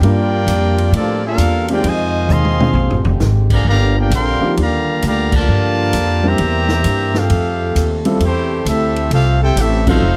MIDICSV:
0, 0, Header, 1, 8, 480
1, 0, Start_track
1, 0, Key_signature, -1, "major"
1, 0, Tempo, 454890
1, 27, Time_signature, 4, 2, 24, 8
1, 10727, End_track
2, 0, Start_track
2, 0, Title_t, "Trumpet section"
2, 0, Program_c, 0, 61
2, 0, Note_on_c, 0, 65, 97
2, 0, Note_on_c, 0, 70, 94
2, 0, Note_on_c, 0, 74, 96
2, 0, Note_on_c, 0, 79, 105
2, 962, Note_off_c, 0, 65, 0
2, 964, Note_off_c, 0, 70, 0
2, 965, Note_off_c, 0, 74, 0
2, 966, Note_off_c, 0, 79, 0
2, 1007, Note_on_c, 0, 65, 84
2, 1007, Note_on_c, 0, 69, 87
2, 1009, Note_on_c, 0, 58, 85
2, 1011, Note_on_c, 0, 74, 96
2, 1289, Note_off_c, 0, 69, 0
2, 1290, Note_off_c, 0, 58, 0
2, 1290, Note_off_c, 0, 65, 0
2, 1291, Note_off_c, 0, 74, 0
2, 1329, Note_on_c, 0, 69, 96
2, 1334, Note_on_c, 0, 62, 94
2, 1338, Note_on_c, 0, 77, 108
2, 1340, Note_on_c, 0, 70, 93
2, 1762, Note_off_c, 0, 69, 0
2, 1765, Note_off_c, 0, 62, 0
2, 1767, Note_off_c, 0, 77, 0
2, 1768, Note_off_c, 0, 70, 0
2, 1816, Note_on_c, 0, 74, 93
2, 1820, Note_on_c, 0, 65, 90
2, 1822, Note_on_c, 0, 70, 92
2, 1823, Note_on_c, 0, 79, 103
2, 1959, Note_off_c, 0, 65, 0
2, 1964, Note_off_c, 0, 74, 0
2, 1967, Note_off_c, 0, 70, 0
2, 1968, Note_off_c, 0, 79, 0
2, 1972, Note_on_c, 0, 65, 105
2, 1978, Note_on_c, 0, 75, 103
2, 1979, Note_on_c, 0, 72, 101
2, 1979, Note_on_c, 0, 80, 117
2, 2437, Note_off_c, 0, 75, 0
2, 2439, Note_off_c, 0, 65, 0
2, 2443, Note_off_c, 0, 72, 0
2, 2443, Note_off_c, 0, 80, 0
2, 2449, Note_on_c, 0, 77, 92
2, 2450, Note_on_c, 0, 75, 90
2, 2451, Note_on_c, 0, 68, 93
2, 2451, Note_on_c, 0, 84, 107
2, 2918, Note_off_c, 0, 75, 0
2, 3231, Note_off_c, 0, 77, 0
2, 3232, Note_off_c, 0, 68, 0
2, 3232, Note_off_c, 0, 84, 0
2, 3726, Note_on_c, 0, 74, 89
2, 3729, Note_on_c, 0, 82, 96
2, 3730, Note_on_c, 0, 68, 85
2, 3732, Note_on_c, 0, 77, 82
2, 3868, Note_off_c, 0, 74, 0
2, 3870, Note_off_c, 0, 68, 0
2, 3870, Note_off_c, 0, 82, 0
2, 3871, Note_off_c, 0, 77, 0
2, 3886, Note_on_c, 0, 82, 115
2, 3893, Note_on_c, 0, 67, 99
2, 3895, Note_on_c, 0, 77, 92
2, 3897, Note_on_c, 0, 74, 92
2, 4169, Note_off_c, 0, 82, 0
2, 4172, Note_off_c, 0, 67, 0
2, 4173, Note_off_c, 0, 77, 0
2, 4174, Note_off_c, 0, 74, 0
2, 4218, Note_on_c, 0, 79, 99
2, 4221, Note_on_c, 0, 65, 84
2, 4221, Note_on_c, 0, 74, 85
2, 4224, Note_on_c, 0, 70, 88
2, 4363, Note_off_c, 0, 70, 0
2, 4365, Note_off_c, 0, 79, 0
2, 4366, Note_off_c, 0, 65, 0
2, 4366, Note_off_c, 0, 74, 0
2, 4376, Note_on_c, 0, 70, 97
2, 4380, Note_on_c, 0, 79, 96
2, 4381, Note_on_c, 0, 84, 109
2, 4382, Note_on_c, 0, 77, 99
2, 4808, Note_off_c, 0, 70, 0
2, 4810, Note_off_c, 0, 79, 0
2, 4811, Note_off_c, 0, 77, 0
2, 4811, Note_off_c, 0, 84, 0
2, 4870, Note_on_c, 0, 74, 94
2, 4874, Note_on_c, 0, 77, 92
2, 4879, Note_on_c, 0, 67, 90
2, 4882, Note_on_c, 0, 82, 103
2, 5328, Note_off_c, 0, 74, 0
2, 5329, Note_off_c, 0, 77, 0
2, 5332, Note_off_c, 0, 67, 0
2, 5333, Note_off_c, 0, 82, 0
2, 5351, Note_on_c, 0, 67, 90
2, 5352, Note_on_c, 0, 77, 92
2, 5358, Note_on_c, 0, 82, 101
2, 5359, Note_on_c, 0, 74, 90
2, 5622, Note_off_c, 0, 67, 0
2, 5622, Note_off_c, 0, 77, 0
2, 5625, Note_off_c, 0, 82, 0
2, 5626, Note_off_c, 0, 74, 0
2, 5660, Note_on_c, 0, 74, 103
2, 5663, Note_on_c, 0, 81, 120
2, 5669, Note_on_c, 0, 65, 104
2, 5671, Note_on_c, 0, 70, 102
2, 6599, Note_off_c, 0, 74, 0
2, 6600, Note_off_c, 0, 81, 0
2, 6603, Note_off_c, 0, 65, 0
2, 6604, Note_off_c, 0, 70, 0
2, 6629, Note_on_c, 0, 67, 101
2, 6629, Note_on_c, 0, 76, 99
2, 6630, Note_on_c, 0, 72, 98
2, 6630, Note_on_c, 0, 82, 121
2, 7563, Note_off_c, 0, 67, 0
2, 7563, Note_off_c, 0, 76, 0
2, 7564, Note_off_c, 0, 72, 0
2, 7564, Note_off_c, 0, 82, 0
2, 7580, Note_on_c, 0, 60, 82
2, 7580, Note_on_c, 0, 67, 80
2, 7583, Note_on_c, 0, 77, 91
2, 7586, Note_on_c, 0, 69, 81
2, 8460, Note_off_c, 0, 60, 0
2, 8460, Note_off_c, 0, 67, 0
2, 8462, Note_off_c, 0, 77, 0
2, 8463, Note_off_c, 0, 69, 0
2, 8687, Note_on_c, 0, 57, 80
2, 8687, Note_on_c, 0, 64, 79
2, 8687, Note_on_c, 0, 67, 81
2, 8690, Note_on_c, 0, 72, 97
2, 9123, Note_off_c, 0, 57, 0
2, 9123, Note_off_c, 0, 64, 0
2, 9123, Note_off_c, 0, 67, 0
2, 9124, Note_off_c, 0, 72, 0
2, 9166, Note_on_c, 0, 76, 106
2, 9170, Note_on_c, 0, 69, 90
2, 9172, Note_on_c, 0, 67, 84
2, 9177, Note_on_c, 0, 60, 86
2, 9624, Note_off_c, 0, 60, 0
2, 9624, Note_off_c, 0, 69, 0
2, 9626, Note_off_c, 0, 67, 0
2, 9635, Note_off_c, 0, 76, 0
2, 9637, Note_on_c, 0, 60, 97
2, 9637, Note_on_c, 0, 69, 104
2, 9639, Note_on_c, 0, 67, 100
2, 9645, Note_on_c, 0, 77, 109
2, 9923, Note_off_c, 0, 60, 0
2, 9923, Note_off_c, 0, 69, 0
2, 9924, Note_off_c, 0, 67, 0
2, 9927, Note_off_c, 0, 77, 0
2, 9945, Note_on_c, 0, 64, 98
2, 9947, Note_on_c, 0, 79, 110
2, 9949, Note_on_c, 0, 69, 100
2, 9951, Note_on_c, 0, 72, 89
2, 10096, Note_off_c, 0, 64, 0
2, 10097, Note_off_c, 0, 79, 0
2, 10098, Note_off_c, 0, 69, 0
2, 10099, Note_off_c, 0, 72, 0
2, 10123, Note_on_c, 0, 60, 86
2, 10125, Note_on_c, 0, 76, 98
2, 10129, Note_on_c, 0, 67, 92
2, 10130, Note_on_c, 0, 69, 89
2, 10427, Note_off_c, 0, 60, 0
2, 10428, Note_off_c, 0, 76, 0
2, 10430, Note_off_c, 0, 67, 0
2, 10431, Note_off_c, 0, 69, 0
2, 10437, Note_on_c, 0, 63, 90
2, 10439, Note_on_c, 0, 72, 92
2, 10444, Note_on_c, 0, 69, 86
2, 10446, Note_on_c, 0, 77, 110
2, 10727, Note_off_c, 0, 63, 0
2, 10727, Note_off_c, 0, 69, 0
2, 10727, Note_off_c, 0, 72, 0
2, 10727, Note_off_c, 0, 77, 0
2, 10727, End_track
3, 0, Start_track
3, 0, Title_t, "Grand piano"
3, 0, Program_c, 1, 0
3, 34, Note_on_c, 1, 55, 71
3, 38, Note_on_c, 1, 70, 80
3, 40, Note_on_c, 1, 58, 68
3, 40, Note_on_c, 1, 62, 62
3, 41, Note_on_c, 1, 65, 64
3, 761, Note_off_c, 1, 55, 0
3, 763, Note_off_c, 1, 70, 0
3, 764, Note_off_c, 1, 58, 0
3, 764, Note_off_c, 1, 62, 0
3, 765, Note_off_c, 1, 65, 0
3, 1792, Note_on_c, 1, 60, 68
3, 1799, Note_on_c, 1, 56, 76
3, 1800, Note_on_c, 1, 63, 66
3, 1801, Note_on_c, 1, 67, 83
3, 1803, Note_on_c, 1, 65, 73
3, 1936, Note_off_c, 1, 60, 0
3, 1939, Note_off_c, 1, 56, 0
3, 1939, Note_off_c, 1, 63, 0
3, 1940, Note_off_c, 1, 67, 0
3, 1941, Note_off_c, 1, 65, 0
3, 2744, Note_on_c, 1, 56, 64
3, 2746, Note_on_c, 1, 60, 62
3, 2747, Note_on_c, 1, 65, 60
3, 2749, Note_on_c, 1, 62, 61
3, 2750, Note_on_c, 1, 79, 71
3, 3354, Note_off_c, 1, 56, 0
3, 3355, Note_off_c, 1, 60, 0
3, 3356, Note_off_c, 1, 65, 0
3, 3357, Note_off_c, 1, 62, 0
3, 3358, Note_off_c, 1, 79, 0
3, 4654, Note_on_c, 1, 58, 67
3, 4655, Note_on_c, 1, 53, 75
3, 4656, Note_on_c, 1, 62, 71
3, 4664, Note_on_c, 1, 63, 70
3, 4665, Note_on_c, 1, 67, 82
3, 4806, Note_off_c, 1, 53, 0
3, 4806, Note_off_c, 1, 58, 0
3, 4807, Note_off_c, 1, 62, 0
3, 4811, Note_off_c, 1, 63, 0
3, 4811, Note_off_c, 1, 67, 0
3, 6571, Note_on_c, 1, 60, 67
3, 6572, Note_on_c, 1, 55, 72
3, 6575, Note_on_c, 1, 64, 62
3, 6577, Note_on_c, 1, 62, 67
3, 6581, Note_on_c, 1, 70, 80
3, 6724, Note_off_c, 1, 60, 0
3, 6725, Note_off_c, 1, 55, 0
3, 6726, Note_off_c, 1, 64, 0
3, 6727, Note_off_c, 1, 62, 0
3, 6729, Note_off_c, 1, 70, 0
3, 8496, Note_on_c, 1, 55, 76
3, 8498, Note_on_c, 1, 60, 74
3, 8502, Note_on_c, 1, 65, 70
3, 8505, Note_on_c, 1, 64, 68
3, 8509, Note_on_c, 1, 69, 90
3, 8647, Note_off_c, 1, 55, 0
3, 8647, Note_off_c, 1, 60, 0
3, 8649, Note_off_c, 1, 65, 0
3, 8651, Note_off_c, 1, 64, 0
3, 8653, Note_off_c, 1, 69, 0
3, 10418, Note_on_c, 1, 60, 68
3, 10419, Note_on_c, 1, 54, 73
3, 10420, Note_on_c, 1, 63, 64
3, 10424, Note_on_c, 1, 65, 64
3, 10427, Note_on_c, 1, 69, 79
3, 10567, Note_off_c, 1, 60, 0
3, 10568, Note_off_c, 1, 54, 0
3, 10568, Note_off_c, 1, 63, 0
3, 10570, Note_off_c, 1, 65, 0
3, 10572, Note_off_c, 1, 69, 0
3, 10727, End_track
4, 0, Start_track
4, 0, Title_t, "Trombone section"
4, 0, Program_c, 2, 61
4, 0, Note_on_c, 2, 58, 86
4, 0, Note_on_c, 2, 62, 87
4, 0, Note_on_c, 2, 67, 88
4, 964, Note_off_c, 2, 67, 0
4, 967, Note_off_c, 2, 58, 0
4, 967, Note_off_c, 2, 62, 0
4, 994, Note_on_c, 2, 53, 82
4, 996, Note_on_c, 2, 62, 76
4, 999, Note_on_c, 2, 58, 79
4, 1283, Note_off_c, 2, 53, 0
4, 1284, Note_off_c, 2, 62, 0
4, 1285, Note_off_c, 2, 58, 0
4, 1313, Note_on_c, 2, 65, 89
4, 1315, Note_on_c, 2, 62, 89
4, 1319, Note_on_c, 2, 58, 89
4, 1753, Note_off_c, 2, 65, 0
4, 1755, Note_off_c, 2, 62, 0
4, 1757, Note_off_c, 2, 58, 0
4, 1780, Note_on_c, 2, 58, 86
4, 1782, Note_on_c, 2, 62, 84
4, 1782, Note_on_c, 2, 67, 87
4, 1939, Note_on_c, 2, 56, 92
4, 1944, Note_on_c, 2, 48, 94
4, 1946, Note_off_c, 2, 58, 0
4, 1947, Note_off_c, 2, 62, 0
4, 1947, Note_off_c, 2, 67, 0
4, 1948, Note_on_c, 2, 51, 94
4, 2396, Note_off_c, 2, 56, 0
4, 2401, Note_off_c, 2, 51, 0
4, 2404, Note_on_c, 2, 60, 94
4, 2409, Note_on_c, 2, 56, 95
4, 2414, Note_on_c, 2, 51, 91
4, 2425, Note_off_c, 2, 48, 0
4, 2900, Note_off_c, 2, 51, 0
4, 3209, Note_off_c, 2, 60, 0
4, 3211, Note_off_c, 2, 56, 0
4, 3709, Note_on_c, 2, 50, 82
4, 3709, Note_on_c, 2, 53, 81
4, 3710, Note_on_c, 2, 58, 78
4, 3859, Note_off_c, 2, 50, 0
4, 3859, Note_off_c, 2, 53, 0
4, 3859, Note_off_c, 2, 58, 0
4, 3879, Note_on_c, 2, 58, 95
4, 3881, Note_on_c, 2, 55, 89
4, 3885, Note_on_c, 2, 50, 96
4, 4165, Note_off_c, 2, 58, 0
4, 4166, Note_off_c, 2, 55, 0
4, 4168, Note_off_c, 2, 50, 0
4, 4185, Note_on_c, 2, 62, 86
4, 4191, Note_on_c, 2, 58, 84
4, 4193, Note_on_c, 2, 67, 85
4, 4348, Note_off_c, 2, 62, 0
4, 4351, Note_off_c, 2, 58, 0
4, 4352, Note_off_c, 2, 67, 0
4, 4362, Note_on_c, 2, 50, 100
4, 4362, Note_on_c, 2, 60, 93
4, 4368, Note_on_c, 2, 55, 96
4, 4800, Note_off_c, 2, 50, 0
4, 4800, Note_off_c, 2, 60, 0
4, 4804, Note_off_c, 2, 55, 0
4, 4845, Note_on_c, 2, 50, 90
4, 4849, Note_on_c, 2, 55, 90
4, 4853, Note_on_c, 2, 58, 94
4, 5315, Note_off_c, 2, 50, 0
4, 5317, Note_off_c, 2, 55, 0
4, 5319, Note_off_c, 2, 58, 0
4, 5344, Note_on_c, 2, 55, 88
4, 5348, Note_on_c, 2, 50, 93
4, 5350, Note_on_c, 2, 58, 88
4, 5618, Note_off_c, 2, 55, 0
4, 5620, Note_off_c, 2, 50, 0
4, 5621, Note_off_c, 2, 58, 0
4, 5645, Note_on_c, 2, 53, 89
4, 5647, Note_on_c, 2, 50, 90
4, 5647, Note_on_c, 2, 58, 95
4, 6591, Note_off_c, 2, 53, 0
4, 6592, Note_off_c, 2, 58, 0
4, 6593, Note_off_c, 2, 50, 0
4, 6609, Note_on_c, 2, 52, 87
4, 6609, Note_on_c, 2, 55, 89
4, 6612, Note_on_c, 2, 58, 89
4, 7553, Note_off_c, 2, 55, 0
4, 7554, Note_off_c, 2, 52, 0
4, 7555, Note_off_c, 2, 58, 0
4, 7571, Note_on_c, 2, 60, 75
4, 7576, Note_on_c, 2, 65, 73
4, 7578, Note_on_c, 2, 57, 74
4, 8456, Note_off_c, 2, 60, 0
4, 8458, Note_off_c, 2, 65, 0
4, 8459, Note_off_c, 2, 57, 0
4, 8684, Note_on_c, 2, 60, 83
4, 8685, Note_on_c, 2, 52, 80
4, 8692, Note_on_c, 2, 57, 80
4, 9121, Note_off_c, 2, 60, 0
4, 9122, Note_off_c, 2, 52, 0
4, 9125, Note_off_c, 2, 57, 0
4, 9166, Note_on_c, 2, 60, 88
4, 9167, Note_on_c, 2, 64, 87
4, 9168, Note_on_c, 2, 57, 93
4, 9619, Note_off_c, 2, 57, 0
4, 9622, Note_off_c, 2, 60, 0
4, 9631, Note_on_c, 2, 57, 93
4, 9632, Note_on_c, 2, 65, 93
4, 9635, Note_off_c, 2, 64, 0
4, 9635, Note_on_c, 2, 60, 91
4, 9920, Note_off_c, 2, 57, 0
4, 9920, Note_off_c, 2, 65, 0
4, 9922, Note_off_c, 2, 60, 0
4, 9941, Note_on_c, 2, 64, 96
4, 9947, Note_on_c, 2, 60, 94
4, 9947, Note_on_c, 2, 67, 95
4, 10094, Note_off_c, 2, 64, 0
4, 10097, Note_off_c, 2, 60, 0
4, 10097, Note_off_c, 2, 67, 0
4, 10117, Note_on_c, 2, 64, 92
4, 10118, Note_on_c, 2, 57, 92
4, 10118, Note_on_c, 2, 60, 90
4, 10417, Note_off_c, 2, 60, 0
4, 10424, Note_off_c, 2, 64, 0
4, 10425, Note_off_c, 2, 57, 0
4, 10429, Note_on_c, 2, 60, 79
4, 10439, Note_on_c, 2, 57, 86
4, 10441, Note_on_c, 2, 65, 83
4, 10727, Note_off_c, 2, 57, 0
4, 10727, Note_off_c, 2, 60, 0
4, 10727, Note_off_c, 2, 65, 0
4, 10727, End_track
5, 0, Start_track
5, 0, Title_t, "Trombone section"
5, 0, Program_c, 3, 61
5, 0, Note_on_c, 3, 60, 74
5, 11, Note_on_c, 3, 55, 78
5, 16, Note_on_c, 3, 67, 91
5, 19, Note_on_c, 3, 65, 85
5, 1919, Note_off_c, 3, 55, 0
5, 1921, Note_off_c, 3, 60, 0
5, 1921, Note_off_c, 3, 67, 0
5, 1923, Note_off_c, 3, 65, 0
5, 1948, Note_on_c, 3, 65, 83
5, 1956, Note_on_c, 3, 60, 78
5, 1962, Note_on_c, 3, 51, 77
5, 1963, Note_on_c, 3, 56, 74
5, 2897, Note_off_c, 3, 65, 0
5, 2897, Note_on_c, 3, 50, 77
5, 2898, Note_on_c, 3, 67, 88
5, 2904, Note_off_c, 3, 51, 0
5, 3848, Note_off_c, 3, 50, 0
5, 3851, Note_off_c, 3, 60, 0
5, 3852, Note_off_c, 3, 67, 0
5, 3852, Note_on_c, 3, 62, 73
5, 3855, Note_off_c, 3, 56, 0
5, 3861, Note_on_c, 3, 50, 81
5, 3864, Note_on_c, 3, 55, 73
5, 3865, Note_on_c, 3, 65, 84
5, 5759, Note_off_c, 3, 62, 0
5, 5763, Note_off_c, 3, 50, 0
5, 5765, Note_off_c, 3, 55, 0
5, 5765, Note_off_c, 3, 65, 0
5, 5788, Note_on_c, 3, 67, 92
5, 5791, Note_on_c, 3, 55, 70
5, 5792, Note_on_c, 3, 53, 74
5, 5794, Note_on_c, 3, 58, 78
5, 6738, Note_off_c, 3, 53, 0
5, 6738, Note_off_c, 3, 55, 0
5, 6757, Note_on_c, 3, 48, 79
5, 6757, Note_on_c, 3, 60, 71
5, 7687, Note_off_c, 3, 67, 0
5, 7690, Note_off_c, 3, 58, 0
5, 7701, Note_off_c, 3, 60, 0
5, 7710, Note_on_c, 3, 69, 90
5, 7713, Note_on_c, 3, 55, 77
5, 7718, Note_on_c, 3, 57, 79
5, 10552, Note_off_c, 3, 48, 0
5, 10560, Note_off_c, 3, 55, 0
5, 10583, Note_on_c, 3, 54, 71
5, 10596, Note_on_c, 3, 51, 79
5, 10727, Note_off_c, 3, 51, 0
5, 10727, Note_off_c, 3, 54, 0
5, 10727, Note_off_c, 3, 57, 0
5, 10727, Note_off_c, 3, 69, 0
5, 10727, End_track
6, 0, Start_track
6, 0, Title_t, "Upright bass"
6, 0, Program_c, 4, 32
6, 12, Note_on_c, 4, 43, 93
6, 485, Note_off_c, 4, 43, 0
6, 492, Note_on_c, 4, 41, 102
6, 965, Note_off_c, 4, 41, 0
6, 970, Note_on_c, 4, 45, 96
6, 1444, Note_off_c, 4, 45, 0
6, 1452, Note_on_c, 4, 40, 96
6, 1924, Note_off_c, 4, 40, 0
6, 1939, Note_on_c, 4, 41, 92
6, 2408, Note_off_c, 4, 41, 0
6, 2415, Note_on_c, 4, 39, 99
6, 2879, Note_off_c, 4, 39, 0
6, 2885, Note_on_c, 4, 34, 94
6, 3051, Note_off_c, 4, 34, 0
6, 3051, Note_on_c, 4, 32, 59
6, 3205, Note_off_c, 4, 32, 0
6, 3211, Note_on_c, 4, 29, 73
6, 3367, Note_off_c, 4, 29, 0
6, 3380, Note_on_c, 4, 32, 88
6, 3844, Note_off_c, 4, 32, 0
6, 3850, Note_on_c, 4, 31, 89
6, 4323, Note_off_c, 4, 31, 0
6, 4331, Note_on_c, 4, 34, 91
6, 4630, Note_off_c, 4, 34, 0
6, 4824, Note_on_c, 4, 39, 92
6, 5290, Note_off_c, 4, 39, 0
6, 5308, Note_on_c, 4, 38, 94
6, 5772, Note_off_c, 4, 38, 0
6, 5783, Note_on_c, 4, 43, 92
6, 6249, Note_off_c, 4, 43, 0
6, 6259, Note_on_c, 4, 41, 101
6, 6727, Note_off_c, 4, 41, 0
6, 6743, Note_on_c, 4, 40, 93
6, 7209, Note_off_c, 4, 40, 0
6, 7223, Note_on_c, 4, 43, 92
6, 7689, Note_off_c, 4, 43, 0
6, 7701, Note_on_c, 4, 41, 94
6, 8168, Note_off_c, 4, 41, 0
6, 8182, Note_on_c, 4, 39, 98
6, 8645, Note_off_c, 4, 39, 0
6, 8652, Note_on_c, 4, 40, 90
6, 9123, Note_off_c, 4, 40, 0
6, 9129, Note_on_c, 4, 38, 89
6, 9602, Note_off_c, 4, 38, 0
6, 9610, Note_on_c, 4, 36, 92
6, 10082, Note_off_c, 4, 36, 0
6, 10088, Note_on_c, 4, 33, 100
6, 10558, Note_off_c, 4, 33, 0
6, 10564, Note_on_c, 4, 29, 90
6, 10727, Note_off_c, 4, 29, 0
6, 10727, End_track
7, 0, Start_track
7, 0, Title_t, "Muted upright bass strokes"
7, 4652, Note_on_c, 9, 29, 47
7, 4757, Note_off_c, 9, 29, 0
7, 10727, End_track
8, 0, Start_track
8, 0, Title_t, "Drums"
8, 32, Note_on_c, 9, 51, 71
8, 138, Note_off_c, 9, 51, 0
8, 503, Note_on_c, 9, 44, 70
8, 503, Note_on_c, 9, 51, 87
8, 609, Note_off_c, 9, 44, 0
8, 609, Note_off_c, 9, 51, 0
8, 826, Note_on_c, 9, 51, 58
8, 932, Note_off_c, 9, 51, 0
8, 986, Note_on_c, 9, 51, 76
8, 1091, Note_off_c, 9, 51, 0
8, 1458, Note_on_c, 9, 44, 63
8, 1458, Note_on_c, 9, 51, 81
8, 1563, Note_off_c, 9, 44, 0
8, 1563, Note_off_c, 9, 51, 0
8, 1776, Note_on_c, 9, 51, 58
8, 1882, Note_off_c, 9, 51, 0
8, 1940, Note_on_c, 9, 51, 74
8, 2045, Note_off_c, 9, 51, 0
8, 2422, Note_on_c, 9, 44, 60
8, 2424, Note_on_c, 9, 47, 60
8, 2528, Note_off_c, 9, 44, 0
8, 2530, Note_off_c, 9, 47, 0
8, 2582, Note_on_c, 9, 47, 65
8, 2688, Note_off_c, 9, 47, 0
8, 2747, Note_on_c, 9, 47, 84
8, 2852, Note_off_c, 9, 47, 0
8, 2899, Note_on_c, 9, 43, 84
8, 3005, Note_off_c, 9, 43, 0
8, 3065, Note_on_c, 9, 43, 90
8, 3171, Note_off_c, 9, 43, 0
8, 3215, Note_on_c, 9, 43, 106
8, 3321, Note_off_c, 9, 43, 0
8, 3375, Note_on_c, 9, 44, 60
8, 3377, Note_on_c, 9, 38, 61
8, 3480, Note_off_c, 9, 44, 0
8, 3482, Note_off_c, 9, 38, 0
8, 3695, Note_on_c, 9, 36, 79
8, 3695, Note_on_c, 9, 49, 86
8, 3800, Note_off_c, 9, 36, 0
8, 3801, Note_off_c, 9, 49, 0
8, 4341, Note_on_c, 9, 44, 70
8, 4341, Note_on_c, 9, 51, 89
8, 4447, Note_off_c, 9, 44, 0
8, 4447, Note_off_c, 9, 51, 0
8, 4826, Note_on_c, 9, 51, 71
8, 4932, Note_off_c, 9, 51, 0
8, 5301, Note_on_c, 9, 44, 56
8, 5301, Note_on_c, 9, 51, 84
8, 5407, Note_off_c, 9, 44, 0
8, 5407, Note_off_c, 9, 51, 0
8, 5616, Note_on_c, 9, 49, 90
8, 5618, Note_on_c, 9, 36, 98
8, 5721, Note_off_c, 9, 49, 0
8, 5723, Note_off_c, 9, 36, 0
8, 6257, Note_on_c, 9, 44, 64
8, 6257, Note_on_c, 9, 51, 88
8, 6362, Note_off_c, 9, 44, 0
8, 6362, Note_off_c, 9, 51, 0
8, 6733, Note_on_c, 9, 51, 72
8, 6839, Note_off_c, 9, 51, 0
8, 7055, Note_on_c, 9, 38, 70
8, 7160, Note_off_c, 9, 38, 0
8, 7218, Note_on_c, 9, 44, 68
8, 7218, Note_on_c, 9, 51, 81
8, 7323, Note_off_c, 9, 44, 0
8, 7323, Note_off_c, 9, 51, 0
8, 7537, Note_on_c, 9, 38, 62
8, 7643, Note_off_c, 9, 38, 0
8, 7699, Note_on_c, 9, 51, 80
8, 7805, Note_off_c, 9, 51, 0
8, 8188, Note_on_c, 9, 44, 65
8, 8188, Note_on_c, 9, 51, 82
8, 8293, Note_off_c, 9, 44, 0
8, 8293, Note_off_c, 9, 51, 0
8, 8494, Note_on_c, 9, 51, 56
8, 8600, Note_off_c, 9, 51, 0
8, 8657, Note_on_c, 9, 51, 76
8, 8763, Note_off_c, 9, 51, 0
8, 9141, Note_on_c, 9, 44, 60
8, 9141, Note_on_c, 9, 51, 84
8, 9247, Note_off_c, 9, 44, 0
8, 9247, Note_off_c, 9, 51, 0
8, 9458, Note_on_c, 9, 51, 55
8, 9563, Note_off_c, 9, 51, 0
8, 9613, Note_on_c, 9, 51, 73
8, 9719, Note_off_c, 9, 51, 0
8, 10098, Note_on_c, 9, 44, 72
8, 10098, Note_on_c, 9, 51, 92
8, 10203, Note_off_c, 9, 44, 0
8, 10203, Note_off_c, 9, 51, 0
8, 10413, Note_on_c, 9, 49, 86
8, 10415, Note_on_c, 9, 36, 98
8, 10519, Note_off_c, 9, 49, 0
8, 10521, Note_off_c, 9, 36, 0
8, 10727, End_track
0, 0, End_of_file